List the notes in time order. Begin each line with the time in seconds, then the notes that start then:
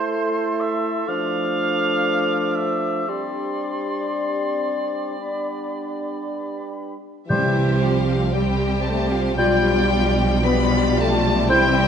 Already playing: A3 E4 A4 C5 C6
0.61 E5
1.08 F3 A3 D4 F5 D6
2.56 E5
3.08 G3 C4 D4 G4 D5 C6
5.19 B3 D4 B5
7.27 C2 C3 E3 G3 C4 G4 C5 G6
7.31 G4 C5 E5
7.81 F3 F5
8.33 G3 G4 C5 G5
8.85 A3 A5
9.11 F3 F5
9.37 B1 B2 F3 G3 D4 F4 G4 D5 G5 G6
10.44 G3 B3 F4 G4 D5 B5
10.99 A3 A5
11.49 C2 C3 E3 G3 C4 E4 G4 C5 E5 G5 G6